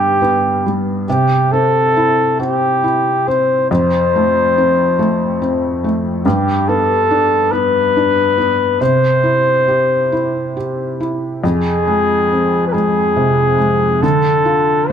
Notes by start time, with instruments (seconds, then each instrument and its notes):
Already playing: felt piano G2 G3 B3, flugelhorn G4
0.22 felt piano B3
0.66 felt piano G3
1.09 felt piano C3, flugelhorn G4
1.52 felt piano C4, flugelhorn A4
1.97 felt piano E4
2.40 felt piano C4, flugelhorn G4
2.84 felt piano E4
3.28 felt piano C4, flugelhorn C5
3.70 felt piano F2, flugelhorn C5
4.16 felt piano A3
4.58 felt piano C4
4.99 felt piano A3
5.42 felt piano C4
5.84 felt piano A3
6.25 felt piano G2, flugelhorn G4
6.68 felt piano B3, flugelhorn A4
7.11 felt piano D4
7.51 felt piano B3, flugelhorn B4
7.97 felt piano D4
8.38 felt piano B3
8.81 felt piano C3, flugelhorn C5
9.23 felt piano E4
9.68 felt piano G4
10.12 felt piano E4
10.57 felt piano G4
11.00 felt piano E4
11.44 felt piano F2, flugelhorn G#4
11.88 felt piano G#3
12.32 felt piano C4
12.68 flugelhorn B4
12.73 felt piano G#3, flugelhorn G#4
13.16 felt piano C3
13.58 felt piano G#3
14.02 felt piano D3, flugelhorn A4
14.45 felt piano F4
14.88 flugelhorn C5